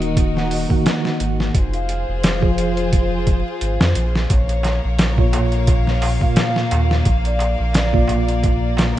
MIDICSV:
0, 0, Header, 1, 7, 480
1, 0, Start_track
1, 0, Key_signature, -5, "minor"
1, 0, Tempo, 689655
1, 1073, Time_signature, 4, 2, 24, 8
1, 6258, End_track
2, 0, Start_track
2, 0, Title_t, "Soft synth lead"
2, 0, Program_c, 0, 80
2, 253, Note_on_c, 0, 78, 95
2, 463, Note_off_c, 0, 78, 0
2, 494, Note_on_c, 0, 78, 93
2, 703, Note_off_c, 0, 78, 0
2, 1213, Note_on_c, 0, 77, 99
2, 1524, Note_off_c, 0, 77, 0
2, 1563, Note_on_c, 0, 77, 95
2, 1891, Note_off_c, 0, 77, 0
2, 2998, Note_on_c, 0, 73, 105
2, 3328, Note_off_c, 0, 73, 0
2, 4093, Note_on_c, 0, 77, 94
2, 4303, Note_off_c, 0, 77, 0
2, 4335, Note_on_c, 0, 77, 93
2, 4544, Note_off_c, 0, 77, 0
2, 5055, Note_on_c, 0, 74, 100
2, 5365, Note_off_c, 0, 74, 0
2, 5397, Note_on_c, 0, 74, 90
2, 5728, Note_off_c, 0, 74, 0
2, 6258, End_track
3, 0, Start_track
3, 0, Title_t, "Violin section"
3, 0, Program_c, 1, 48
3, 0, Note_on_c, 1, 63, 94
3, 0, Note_on_c, 1, 66, 82
3, 0, Note_on_c, 1, 70, 77
3, 1043, Note_off_c, 1, 70, 0
3, 1053, Note_off_c, 1, 66, 0
3, 1054, Note_off_c, 1, 63, 0
3, 1077, Note_on_c, 1, 65, 90
3, 1078, Note_on_c, 1, 68, 84
3, 1078, Note_on_c, 1, 72, 96
3, 2976, Note_off_c, 1, 65, 0
3, 2976, Note_off_c, 1, 68, 0
3, 2976, Note_off_c, 1, 72, 0
3, 2996, Note_on_c, 1, 73, 83
3, 2997, Note_on_c, 1, 70, 78
3, 2997, Note_on_c, 1, 77, 89
3, 2999, Note_on_c, 1, 58, 90
3, 4895, Note_off_c, 1, 73, 0
3, 4896, Note_off_c, 1, 70, 0
3, 4916, Note_on_c, 1, 70, 81
3, 4919, Note_on_c, 1, 74, 78
3, 6258, Note_off_c, 1, 58, 0
3, 6258, Note_off_c, 1, 70, 0
3, 6258, Note_off_c, 1, 74, 0
3, 6258, Note_off_c, 1, 77, 0
3, 6258, End_track
4, 0, Start_track
4, 0, Title_t, "Tine electric piano"
4, 0, Program_c, 2, 4
4, 0, Note_on_c, 2, 51, 89
4, 0, Note_on_c, 2, 58, 82
4, 0, Note_on_c, 2, 66, 88
4, 0, Note_on_c, 2, 75, 104
4, 451, Note_off_c, 2, 51, 0
4, 456, Note_off_c, 2, 58, 0
4, 459, Note_off_c, 2, 66, 0
4, 463, Note_off_c, 2, 75, 0
4, 477, Note_on_c, 2, 51, 88
4, 483, Note_on_c, 2, 58, 78
4, 492, Note_on_c, 2, 66, 71
4, 501, Note_on_c, 2, 78, 90
4, 1056, Note_off_c, 2, 51, 0
4, 1059, Note_off_c, 2, 58, 0
4, 1063, Note_off_c, 2, 66, 0
4, 1068, Note_off_c, 2, 78, 0
4, 1672, Note_on_c, 2, 53, 88
4, 1679, Note_on_c, 2, 65, 75
4, 1687, Note_on_c, 2, 68, 77
4, 1696, Note_on_c, 2, 72, 96
4, 2373, Note_off_c, 2, 53, 0
4, 2376, Note_off_c, 2, 65, 0
4, 2380, Note_off_c, 2, 68, 0
4, 2384, Note_off_c, 2, 72, 0
4, 3594, Note_on_c, 2, 46, 86
4, 3602, Note_on_c, 2, 58, 75
4, 3610, Note_on_c, 2, 65, 81
4, 3619, Note_on_c, 2, 73, 93
4, 4293, Note_off_c, 2, 46, 0
4, 4297, Note_off_c, 2, 58, 0
4, 4301, Note_off_c, 2, 65, 0
4, 4306, Note_off_c, 2, 73, 0
4, 4311, Note_on_c, 2, 46, 81
4, 4319, Note_on_c, 2, 58, 72
4, 4326, Note_on_c, 2, 65, 77
4, 4333, Note_on_c, 2, 77, 91
4, 4893, Note_off_c, 2, 46, 0
4, 4897, Note_off_c, 2, 58, 0
4, 4900, Note_off_c, 2, 65, 0
4, 4904, Note_off_c, 2, 77, 0
4, 5514, Note_on_c, 2, 46, 90
4, 5521, Note_on_c, 2, 58, 83
4, 5527, Note_on_c, 2, 65, 85
4, 5536, Note_on_c, 2, 74, 98
4, 6213, Note_off_c, 2, 46, 0
4, 6217, Note_off_c, 2, 58, 0
4, 6220, Note_off_c, 2, 65, 0
4, 6224, Note_off_c, 2, 74, 0
4, 6232, Note_on_c, 2, 46, 86
4, 6258, Note_off_c, 2, 46, 0
4, 6258, End_track
5, 0, Start_track
5, 0, Title_t, "Sub bass"
5, 0, Program_c, 3, 38
5, 0, Note_on_c, 3, 27, 90
5, 461, Note_off_c, 3, 27, 0
5, 836, Note_on_c, 3, 32, 85
5, 1049, Note_off_c, 3, 32, 0
5, 1077, Note_on_c, 3, 29, 105
5, 1422, Note_off_c, 3, 29, 0
5, 1451, Note_on_c, 3, 29, 97
5, 2383, Note_off_c, 3, 29, 0
5, 2514, Note_on_c, 3, 32, 99
5, 2631, Note_off_c, 3, 32, 0
5, 2650, Note_on_c, 3, 41, 78
5, 2742, Note_off_c, 3, 41, 0
5, 2755, Note_on_c, 3, 34, 96
5, 2968, Note_off_c, 3, 34, 0
5, 2995, Note_on_c, 3, 34, 99
5, 3341, Note_off_c, 3, 34, 0
5, 3372, Note_on_c, 3, 34, 93
5, 4303, Note_off_c, 3, 34, 0
5, 4674, Note_on_c, 3, 39, 85
5, 4888, Note_off_c, 3, 39, 0
5, 4912, Note_on_c, 3, 34, 106
5, 5260, Note_off_c, 3, 34, 0
5, 5287, Note_on_c, 3, 34, 94
5, 6221, Note_off_c, 3, 34, 0
5, 6258, End_track
6, 0, Start_track
6, 0, Title_t, "Darbuka"
6, 2996, Note_on_c, 9, 63, 53
6, 3065, Note_off_c, 9, 63, 0
6, 3125, Note_on_c, 9, 63, 35
6, 3195, Note_off_c, 9, 63, 0
6, 3225, Note_on_c, 9, 63, 93
6, 3294, Note_off_c, 9, 63, 0
6, 3368, Note_on_c, 9, 63, 34
6, 3437, Note_off_c, 9, 63, 0
6, 3469, Note_on_c, 9, 63, 50
6, 3538, Note_off_c, 9, 63, 0
6, 3600, Note_on_c, 9, 63, 38
6, 3670, Note_off_c, 9, 63, 0
6, 3710, Note_on_c, 9, 63, 96
6, 3715, Note_on_c, 9, 64, 69
6, 3779, Note_off_c, 9, 63, 0
6, 3785, Note_off_c, 9, 64, 0
6, 3843, Note_on_c, 9, 63, 40
6, 3912, Note_off_c, 9, 63, 0
6, 3953, Note_on_c, 9, 63, 52
6, 4022, Note_off_c, 9, 63, 0
6, 4190, Note_on_c, 9, 63, 101
6, 4260, Note_off_c, 9, 63, 0
6, 4322, Note_on_c, 9, 63, 35
6, 4392, Note_off_c, 9, 63, 0
6, 4432, Note_on_c, 9, 63, 53
6, 4502, Note_off_c, 9, 63, 0
6, 4565, Note_on_c, 9, 63, 37
6, 4634, Note_off_c, 9, 63, 0
6, 4675, Note_on_c, 9, 63, 94
6, 4745, Note_off_c, 9, 63, 0
6, 4803, Note_on_c, 9, 63, 36
6, 4872, Note_off_c, 9, 63, 0
6, 4909, Note_on_c, 9, 63, 45
6, 4979, Note_off_c, 9, 63, 0
6, 5038, Note_on_c, 9, 63, 33
6, 5108, Note_off_c, 9, 63, 0
6, 5144, Note_on_c, 9, 63, 86
6, 5213, Note_off_c, 9, 63, 0
6, 5277, Note_on_c, 9, 63, 37
6, 5347, Note_off_c, 9, 63, 0
6, 5383, Note_on_c, 9, 63, 51
6, 5452, Note_off_c, 9, 63, 0
6, 5516, Note_on_c, 9, 63, 36
6, 5586, Note_off_c, 9, 63, 0
6, 5620, Note_on_c, 9, 63, 83
6, 5625, Note_on_c, 9, 64, 74
6, 5690, Note_off_c, 9, 63, 0
6, 5694, Note_off_c, 9, 64, 0
6, 5761, Note_on_c, 9, 63, 41
6, 5831, Note_off_c, 9, 63, 0
6, 5866, Note_on_c, 9, 63, 53
6, 5936, Note_off_c, 9, 63, 0
6, 6103, Note_on_c, 9, 63, 103
6, 6173, Note_off_c, 9, 63, 0
6, 6258, End_track
7, 0, Start_track
7, 0, Title_t, "Drums"
7, 12, Note_on_c, 9, 42, 41
7, 82, Note_off_c, 9, 42, 0
7, 116, Note_on_c, 9, 36, 107
7, 118, Note_on_c, 9, 42, 86
7, 186, Note_off_c, 9, 36, 0
7, 187, Note_off_c, 9, 42, 0
7, 256, Note_on_c, 9, 38, 36
7, 326, Note_off_c, 9, 38, 0
7, 355, Note_on_c, 9, 46, 80
7, 425, Note_off_c, 9, 46, 0
7, 488, Note_on_c, 9, 36, 96
7, 558, Note_off_c, 9, 36, 0
7, 597, Note_on_c, 9, 42, 85
7, 601, Note_on_c, 9, 38, 114
7, 667, Note_off_c, 9, 42, 0
7, 671, Note_off_c, 9, 38, 0
7, 731, Note_on_c, 9, 38, 51
7, 801, Note_off_c, 9, 38, 0
7, 836, Note_on_c, 9, 42, 73
7, 905, Note_off_c, 9, 42, 0
7, 975, Note_on_c, 9, 38, 48
7, 1045, Note_off_c, 9, 38, 0
7, 1076, Note_on_c, 9, 36, 108
7, 1076, Note_on_c, 9, 42, 83
7, 1145, Note_off_c, 9, 36, 0
7, 1145, Note_off_c, 9, 42, 0
7, 1208, Note_on_c, 9, 42, 45
7, 1278, Note_off_c, 9, 42, 0
7, 1315, Note_on_c, 9, 42, 69
7, 1384, Note_off_c, 9, 42, 0
7, 1556, Note_on_c, 9, 42, 92
7, 1560, Note_on_c, 9, 38, 117
7, 1625, Note_off_c, 9, 42, 0
7, 1629, Note_off_c, 9, 38, 0
7, 1688, Note_on_c, 9, 36, 94
7, 1757, Note_off_c, 9, 36, 0
7, 1796, Note_on_c, 9, 42, 70
7, 1865, Note_off_c, 9, 42, 0
7, 1929, Note_on_c, 9, 42, 41
7, 1998, Note_off_c, 9, 42, 0
7, 2036, Note_on_c, 9, 36, 108
7, 2037, Note_on_c, 9, 42, 84
7, 2106, Note_off_c, 9, 36, 0
7, 2106, Note_off_c, 9, 42, 0
7, 2275, Note_on_c, 9, 36, 100
7, 2275, Note_on_c, 9, 42, 69
7, 2344, Note_off_c, 9, 42, 0
7, 2345, Note_off_c, 9, 36, 0
7, 2514, Note_on_c, 9, 42, 86
7, 2584, Note_off_c, 9, 42, 0
7, 2650, Note_on_c, 9, 38, 113
7, 2719, Note_off_c, 9, 38, 0
7, 2752, Note_on_c, 9, 42, 73
7, 2821, Note_off_c, 9, 42, 0
7, 2892, Note_on_c, 9, 38, 58
7, 2961, Note_off_c, 9, 38, 0
7, 2992, Note_on_c, 9, 42, 87
7, 2993, Note_on_c, 9, 36, 109
7, 3062, Note_off_c, 9, 42, 0
7, 3063, Note_off_c, 9, 36, 0
7, 3126, Note_on_c, 9, 42, 44
7, 3195, Note_off_c, 9, 42, 0
7, 3232, Note_on_c, 9, 42, 68
7, 3237, Note_on_c, 9, 38, 40
7, 3302, Note_off_c, 9, 42, 0
7, 3306, Note_off_c, 9, 38, 0
7, 3470, Note_on_c, 9, 42, 85
7, 3474, Note_on_c, 9, 38, 115
7, 3539, Note_off_c, 9, 42, 0
7, 3543, Note_off_c, 9, 38, 0
7, 3605, Note_on_c, 9, 36, 93
7, 3675, Note_off_c, 9, 36, 0
7, 3711, Note_on_c, 9, 42, 73
7, 3780, Note_off_c, 9, 42, 0
7, 3842, Note_on_c, 9, 42, 43
7, 3912, Note_off_c, 9, 42, 0
7, 3949, Note_on_c, 9, 42, 87
7, 3951, Note_on_c, 9, 36, 111
7, 4018, Note_off_c, 9, 42, 0
7, 4021, Note_off_c, 9, 36, 0
7, 4088, Note_on_c, 9, 38, 39
7, 4157, Note_off_c, 9, 38, 0
7, 4189, Note_on_c, 9, 46, 77
7, 4258, Note_off_c, 9, 46, 0
7, 4324, Note_on_c, 9, 36, 98
7, 4394, Note_off_c, 9, 36, 0
7, 4427, Note_on_c, 9, 42, 81
7, 4431, Note_on_c, 9, 38, 117
7, 4497, Note_off_c, 9, 42, 0
7, 4501, Note_off_c, 9, 38, 0
7, 4566, Note_on_c, 9, 38, 53
7, 4636, Note_off_c, 9, 38, 0
7, 4671, Note_on_c, 9, 42, 71
7, 4741, Note_off_c, 9, 42, 0
7, 4810, Note_on_c, 9, 38, 51
7, 4880, Note_off_c, 9, 38, 0
7, 4910, Note_on_c, 9, 42, 83
7, 4911, Note_on_c, 9, 36, 102
7, 4979, Note_off_c, 9, 42, 0
7, 4981, Note_off_c, 9, 36, 0
7, 5046, Note_on_c, 9, 42, 44
7, 5116, Note_off_c, 9, 42, 0
7, 5153, Note_on_c, 9, 42, 69
7, 5223, Note_off_c, 9, 42, 0
7, 5390, Note_on_c, 9, 42, 88
7, 5394, Note_on_c, 9, 38, 114
7, 5459, Note_off_c, 9, 42, 0
7, 5464, Note_off_c, 9, 38, 0
7, 5525, Note_on_c, 9, 36, 102
7, 5595, Note_off_c, 9, 36, 0
7, 5632, Note_on_c, 9, 42, 70
7, 5701, Note_off_c, 9, 42, 0
7, 5766, Note_on_c, 9, 42, 44
7, 5835, Note_off_c, 9, 42, 0
7, 5871, Note_on_c, 9, 42, 84
7, 5872, Note_on_c, 9, 36, 112
7, 5941, Note_off_c, 9, 42, 0
7, 5942, Note_off_c, 9, 36, 0
7, 6113, Note_on_c, 9, 42, 86
7, 6117, Note_on_c, 9, 38, 109
7, 6183, Note_off_c, 9, 42, 0
7, 6187, Note_off_c, 9, 38, 0
7, 6258, End_track
0, 0, End_of_file